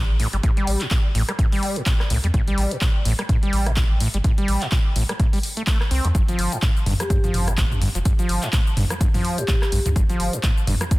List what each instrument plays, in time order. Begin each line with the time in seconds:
Already playing: sub bass A1
0.20 acid bass A2, open hi-hat
0.33 sub bass G1, acid bass G3, closed hi-hat
0.43 acid bass A2, kick, closed hi-hat
0.57 acid bass G3, closed hi-hat
0.67 sub bass A1, open hi-hat
0.81 acid bass A2, clap, closed hi-hat
0.91 acid bass A#2, kick, clap, closed hi-hat
1.15 sub bass A1, acid bass A2, open hi-hat
1.29 acid bass G3, cross-stick, closed hi-hat
1.39 acid bass A2, kick, closed hi-hat
1.52 acid bass G3, open hi-hat
1.63 open hi-hat
1.76 acid bass A2, closed hi-hat
1.86 acid bass A#2, kick, clap, closed hi-hat
2.00 cross-stick, clap
2.10 sub bass C2, acid bass A2, open hi-hat
2.24 sub bass E2, acid bass G3, closed hi-hat
2.34 sub bass A1, acid bass A2, kick, closed hi-hat
2.48 acid bass G3, closed hi-hat
2.58 sub bass A1, open hi-hat
2.71 acid bass A2, closed hi-hat
2.81 acid bass A#2, kick, clap, closed hi-hat
3.05 sub bass A1, acid bass A2, open hi-hat
3.19 acid bass G3, cross-stick, closed hi-hat
3.29 sub bass A2, acid bass A2, kick, closed hi-hat
3.43 acid bass G3, closed hi-hat
3.53 sub bass A1, open hi-hat
3.66 acid bass A2, cross-stick, closed hi-hat
3.77 acid bass A#2, kick, clap, closed hi-hat
4.00 acid bass A2, open hi-hat
4.14 sub bass G1, acid bass G3, closed hi-hat
4.24 acid bass A2, kick, closed hi-hat
4.38 acid bass G3, closed hi-hat
4.48 sub bass A1, open hi-hat
4.62 acid bass A2, clap, closed hi-hat
4.72 acid bass A#2, kick, clap, closed hi-hat
4.96 sub bass A1, acid bass A2, open hi-hat
5.09 acid bass G3, cross-stick, closed hi-hat
5.19 acid bass A2, kick, closed hi-hat
5.33 acid bass G3, open hi-hat
5.43 open hi-hat
5.57 acid bass A3, closed hi-hat
5.67 acid bass A3, kick, clap, closed hi-hat
5.81 cross-stick, clap
5.91 sub bass C2, acid bass C4, open hi-hat
6.04 sub bass E2, acid bass A2, closed hi-hat
6.15 sub bass G1, acid bass G2, kick, closed hi-hat, shaker
6.28 acid bass F3, closed hi-hat, shaker
6.39 sub bass G1, open hi-hat
6.52 acid bass G2, closed hi-hat, shaker
6.62 acid bass A2, kick, clap, closed hi-hat, shaker
6.77 shaker
6.86 sub bass G1, acid bass G2, mid tom, open hi-hat
7.00 acid bass F3, vibraphone G4, cross-stick, closed hi-hat, shaker
7.10 sub bass G2, acid bass G2, vibraphone G4, kick, closed hi-hat, shaker
7.24 acid bass F3, closed hi-hat, mid tom, shaker
7.34 sub bass G1, mid tom, open hi-hat
7.48 acid bass G2, cross-stick, closed hi-hat, shaker
7.58 acid bass A2, kick, clap, closed hi-hat, shaker
7.71 mid tom, shaker
7.82 acid bass G2, open hi-hat
7.95 sub bass F1, acid bass F3, closed hi-hat, shaker
8.05 acid bass G2, kick, closed hi-hat, shaker
8.19 acid bass F3, closed hi-hat, shaker
8.29 sub bass G1, open hi-hat
8.43 acid bass G2, clap, closed hi-hat, shaker
8.53 acid bass A2, kick, clap, closed hi-hat, shaker
8.67 shaker
8.77 sub bass G1, acid bass G2, mid tom, open hi-hat
8.90 acid bass F3, cross-stick, closed hi-hat, shaker
9.01 acid bass G2, kick, closed hi-hat, shaker
9.14 acid bass F3, mid tom, open hi-hat, shaker
9.25 open hi-hat
9.38 acid bass G2, vibraphone G4, closed hi-hat, shaker
9.48 acid bass A2, kick, clap, closed hi-hat, shaker
9.62 cross-stick, clap, shaker
9.72 sub bass A#1, acid bass G2, open hi-hat
9.86 sub bass D2, acid bass F3, closed hi-hat, mid tom, shaker
9.96 sub bass G1, acid bass G2, kick, closed hi-hat, shaker
10.10 acid bass F3, closed hi-hat, shaker
10.20 sub bass G1, open hi-hat
10.33 acid bass G2, closed hi-hat, shaker
10.43 acid bass A2, kick, clap, closed hi-hat, shaker
10.58 shaker
10.67 sub bass G1, acid bass G2, mid tom, open hi-hat
10.81 acid bass F3, cross-stick, closed hi-hat, shaker
10.91 acid bass G2, sub bass G2, kick, closed hi-hat, shaker